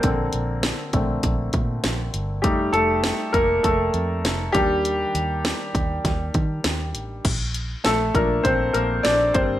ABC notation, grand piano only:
X:1
M:4/4
L:1/8
Q:1/4=100
K:Bb
V:1 name="Grand piano"
[B,B] z6 z | G [A,A]2 [B,B] [A,A]2 z [G,G]- | [G,G]6 z2 | z2 [A,A] B [Cc] [B,B] [Dd] [Cc] |]
V:2 name="Grand piano"
[D,CA]3 [D,A,C] z4 | [G,A,E]3 z4 [E,B,D]- | [E,B,D]6- [E,B,D] z | z3 [F,B,D]4 [G,B,D] |]